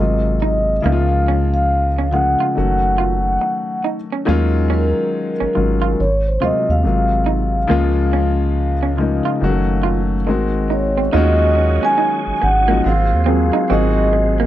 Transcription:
Already playing: grand piano C3 F#3, vibraphone D#5
0.00 analog synth bass G#1, grand piano G#3 A#3 F4
0.40 clean electric guitar D#4, vibraphone D#5
0.81 grand piano C#3 F3 G#3, vibraphone E5 F5
0.85 analog synth bass C#2, grand piano A#3 D#4, clean electric guitar A#3
0.92 grand piano F4
1.28 clean electric guitar C#4
1.54 vibraphone F5
1.99 clean electric guitar C#4
2.12 grand piano C#3 F3 G#3 A#3 G#4, vibraphone F#5, muted clean electric guitar stroke
2.40 clean electric guitar F4
2.55 analog synth bass F#1, grand piano D#3 F#3 A3 C#4 F#4
2.98 clean electric guitar F4
3.41 muted clean electric guitar stroke
3.84 clean electric guitar D#4
4.12 clean electric guitar C#4
4.25 analog synth bass D#2, grand piano D#3 F#3 G#3 C#4 F4, clean electric guitar A#3
4.70 clean electric guitar C#4, vibraphone A#4
5.40 analog synth bass G#1, clean electric guitar C#4
5.54 analog synth bass G#1, grand piano D#3 F#3 G#3 C#4 F4, muted clean electric guitar stroke
5.82 clean electric guitar F4
6.00 analog synth bass G#1, vibraphone C#5
6.27 vibraphone C5
6.40 analog synth bass D#2, grand piano C3 F#3 G#3 A#3 F4, clean electric guitar F4, vibraphone D#5
6.69 analog synth bass D#2, vibraphone F5
6.83 analog synth bass G#1, grand piano C3 F#3 G#3 A#3 F4
7.26 clean electric guitar D#4
7.67 analog synth bass C#2, grand piano C#3 F3 G#3 A#3 F4, clean electric guitar A#3
8.13 clean electric guitar C#4
8.83 clean electric guitar C#4
8.97 grand piano C#3 F3 G#3 A#3 D#4, muted clean electric guitar stroke
9.25 clean electric guitar F4
9.41 analog synth bass F#1, grand piano D#3 F#3 G#3 C#4 F#4
9.49 grand piano A3
9.83 clean electric guitar F4
10.26 analog synth bass G#1, grand piano D#3 G#3 A#3 C4 F#4, muted clean electric guitar stroke
10.70 clean electric guitar D#4, vibraphone C#5
10.98 clean electric guitar C4
11.12 analog synth bass D#2, tonewheel organ D#3 F#3 C#4 D#4 G#4, grand piano G#3 C#4 D#4 F4, horn section A#3 C#4 F#4, clean electric guitar D#4, vibraphone D#5
11.17 grand piano F#4
11.55 muted clean electric guitar stroke
11.83 clean electric guitar C#4, vibraphone G#5
11.98 clean electric guitar D#4
12.27 analog synth bass G#1
12.42 analog synth bass G#1, vibraphone F#5, muted clean electric guitar stroke
12.67 grand piano F3 G#3 C#4 D#4 F#4, clean electric guitar A#3
12.84 analog synth bass G#1, tonewheel organ G#3 C4, horn section A#3 C4 F4, vibraphone F5, muted clean electric guitar stroke
13.13 analog synth bass D#2
13.26 grand piano F#3 A#3 C4 F4 G#4, clean electric guitar C4
13.53 clean electric guitar D#4
13.69 analog synth bass G#1, grand piano F#3 A#3 C4 F4 G#4, tonewheel organ G#3, horn section C4 D#4 F#4, clean electric guitar C4, vibraphone D#5
14.13 muted clean electric guitar stroke
14.40 clean electric guitar A#3

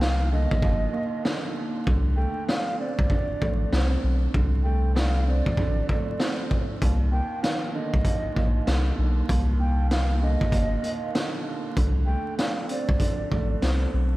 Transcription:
Already playing: sub bass C2, upright piano D#2 A#2 D3
0.01 upright piano D#3, flute F5, snare
0.32 upright piano D3, flute D#5
0.51 sub bass A#1, kick
0.62 sub bass G1, upright piano D#2, kick
0.93 upright piano A#2
1.25 upright piano D3, snare
1.87 sub bass C2, upright piano D3, kick
2.16 upright piano A3, flute G5
2.49 upright piano D4, flute F5, snare
2.79 upright piano C4, flute D5
2.99 sub bass C2, kick
3.10 upright piano D3, kick
3.29 sub bass A1
3.42 sub bass A1, upright piano A3, kick
3.72 sub bass C2, upright piano C4, snare
4.03 sub bass B1
4.34 sub bass C2, upright piano D3, kick
4.64 upright piano A3, flute G5
4.95 upright piano D4, flute F5, snare
5.27 upright piano C4, flute D5
5.46 sub bass A1, kick
5.57 sub bass A1, upright piano D3, kick
5.89 upright piano A3, kick
6.19 upright piano C4, snare
6.51 kick
6.81 sub bass C2, upright piano D#2, kick, closed hi-hat
7.12 upright piano A#2, flute G5
7.43 upright piano D#3, flute F5, snare, closed hi-hat
7.75 upright piano D3, flute D#5
7.94 sub bass C2, kick
8.05 upright piano D#2, kick, closed hi-hat
8.24 sub bass A#1
8.35 sub bass A#1, upright piano A#2, kick
8.67 sub bass C2, upright piano D3, snare, closed hi-hat
8.98 sub bass B1
9.29 sub bass C2, upright piano D#2, kick, closed hi-hat
9.60 upright piano A#2, flute G5
9.91 upright piano D#3, flute F5, snare, closed hi-hat
10.22 upright piano D3, flute D#5
10.41 sub bass A#1, kick
10.52 sub bass G1, upright piano D#2, kick, closed hi-hat
10.83 upright piano A#2, closed hi-hat
11.15 upright piano D3, snare, closed hi-hat
11.77 sub bass C2, upright piano D3, kick, closed hi-hat
12.06 upright piano A3, flute G5
12.38 upright piano D4, flute F5, snare, closed hi-hat
12.69 upright piano C4, flute D5, closed hi-hat
12.89 sub bass C2, kick
13.00 upright piano D3, kick, closed hi-hat
13.19 sub bass A1
13.31 sub bass A1, upright piano A3, kick
13.62 sub bass C2, upright piano C4, snare, closed hi-hat
13.93 sub bass B1

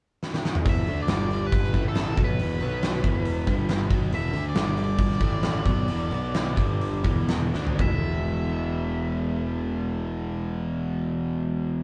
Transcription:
0.23 snare
0.34 snare
0.45 snare
0.55 mid tom
0.63 picked electric bass E1, overdriven electric guitar E2 B2 E3, kick, open hi-hat
0.69 lead electric guitar E5
0.86 picked electric bass D2, overdriven electric guitar D3 A3 D4, open hi-hat
1.02 lead electric guitar D5
1.07 picked electric bass G1, overdriven electric guitar G2 D3 G3, snare, open hi-hat
1.31 open hi-hat
1.47 lead electric guitar B4
1.52 kick, open hi-hat
1.64 snare
1.74 picked electric bass A1, overdriven electric guitar A2 E3 A3, kick, open hi-hat
1.89 lead electric guitar A4
1.95 snare, open hi-hat
2.15 picked electric bass B1, overdriven electric guitar B2 F#3 B3, kick, open hi-hat
2.24 lead electric guitar B4
2.39 picked electric bass E1, overdriven electric guitar E2 B2 E3, open hi-hat
2.61 picked electric bass B1, overdriven electric guitar B2 F#3 B3, open hi-hat
2.82 snare, open hi-hat
2.93 snare
3.04 picked electric bass E1, overdriven electric guitar E2 B2 E3, kick, open hi-hat
3.25 open hi-hat
3.47 picked electric bass G1, overdriven electric guitar G2 D3 G3, kick, open hi-hat
3.69 snare, open hi-hat
3.90 picked electric bass B1, overdriven electric guitar B2 F#3 B3, kick, open hi-hat
4.11 picked electric bass E1, overdriven electric guitar E2 B2 E3, lead electric guitar E5, open hi-hat
4.32 picked electric bass D2, overdriven electric guitar D3 A3 D4, open hi-hat
4.49 lead electric guitar D5
4.54 picked electric bass G1, overdriven electric guitar G2 D3 G3, snare, open hi-hat
4.66 snare
4.77 open hi-hat
4.83 lead electric guitar D5
4.99 kick, open hi-hat
5.11 snare
5.20 picked electric bass A1, overdriven electric guitar A2 E3 A3, kick, open hi-hat
5.43 snare, open hi-hat
5.65 picked electric bass B1, overdriven electric guitar B2 F#3 B3, kick, open hi-hat
5.88 picked electric bass E1, overdriven electric guitar E2 B2 E3, open hi-hat
6.11 picked electric bass B1, overdriven electric guitar B2 F#3 B3, open hi-hat
6.34 snare, open hi-hat
6.55 picked electric bass G1, overdriven electric guitar G2 D3 G3, kick, open hi-hat
6.81 open hi-hat
7.04 picked electric bass E1, overdriven electric guitar E2 B2 E3, kick, open hi-hat
7.28 snare, open hi-hat
7.54 picked electric bass D2, overdriven electric guitar D3 A3 D4, snare
7.67 floor tom
7.78 picked electric bass E1, distorted electric guitar E2 B2, overdriven electric guitar E3 G#3 B3 E4, lead electric guitar E5, kick, floor tom
7.83 distorted electric guitar E3

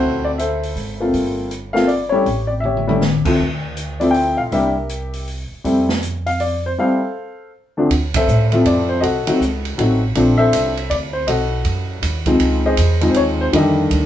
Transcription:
Already playing: upright piano A3 C4 E4 F#4 A4 C5
0.01 upright bass D2
0.25 upright piano D5
0.38 upright piano A4 C5 E5, closed hi-hat
0.63 open hi-hat
0.76 upright bass G#1, open hi-hat
1.00 upright piano A3 A#3 C4 F4
1.14 upright bass G1, kick, open hi-hat
1.51 closed hi-hat
1.73 upright piano A3 A#3 C4 F4 F5, snare
1.88 upright piano D5, open hi-hat
2.09 upright piano G3 A3 C#4 E4 C#5
2.14 upright piano G4
2.26 upright bass A1, kick, open hi-hat
2.47 upright piano D5
2.60 upright piano E5, mid tom
2.65 upright piano G4 C#5
2.77 mid tom
2.87 upright piano G3 A3 C#4 E4, mid tom
3.01 snare
3.25 upright piano F3 A3 C4 E4, muted upright bass stroke, kick, crash
3.39 upright bass D2, kick
3.77 closed hi-hat
4.00 upright piano F3 A3 C4 E4 D5, open hi-hat
4.11 upright piano G5, open hi-hat
4.37 upright bass B1, upright piano F5
4.52 upright bass C2, upright piano G3 A#3 D4 E4 G4 A#4 E5, kick, open hi-hat
4.89 closed hi-hat
5.13 open hi-hat
5.27 open hi-hat
5.51 muted upright bass stroke
5.64 upright bass F2, upright piano G3 A3 C4 E4, kick, open hi-hat
5.89 snare
6.02 closed hi-hat
6.26 upright piano F5, open hi-hat
6.40 upright piano D5, open hi-hat
6.66 upright piano C5
6.78 upright piano G3 A3 C4 E4 A4 C5 F5
7.77 upright piano D2 F3 A3 C4 D4
7.90 upright bass D2, kick, ride
8.14 upright piano A4 C5 E5, kick, ride
8.28 upright bass A2, hi-hat pedal
8.52 upright piano F3 A3 C4 E4, ride
8.65 upright bass F2, upright piano D5, kick, ride
8.89 upright piano C5
9.01 upright bass C2, upright piano F#4 A4 D#5, kick, ride
9.27 upright piano F#3 A3 C4 D#4, muted upright bass stroke, ride
9.40 upright bass C#2, kick, hi-hat pedal
9.65 ride
9.78 upright bass A1, upright piano F#3 A3 C4 D#4, kick, ride
10.15 upright bass A#1, upright piano F3 A3 C4 D4, kick, ride
10.38 upright piano A4 C5 E5
10.53 upright bass C2, kick, hi-hat pedal, ride
10.77 ride
10.90 upright bass D2, upright piano D5, kick, ride
11.13 upright piano C5
11.27 upright bass B1, upright piano F#4 A4 D#5, kick, ride
11.65 upright bass F#2, kick, ride
12.02 upright bass D#2, kick, hi-hat pedal, ride
12.26 upright piano F3 G#3 C4 D#4, kick, ride
12.39 upright bass C#2, ride
12.66 upright piano G#4 C5 D#5
12.77 upright bass E2, kick, hi-hat pedal, ride
13.01 upright piano F3 G#3 C4 D#4, ride
13.11 upright piano C5, ride
13.15 upright bass D#2, upright piano C#5, kick
13.41 upright piano C5
13.53 upright bass F2, upright piano D3 D#3 G3 A3 G4 D#5, kick, ride
13.58 upright piano A4
13.91 upright bass D2, kick, ride

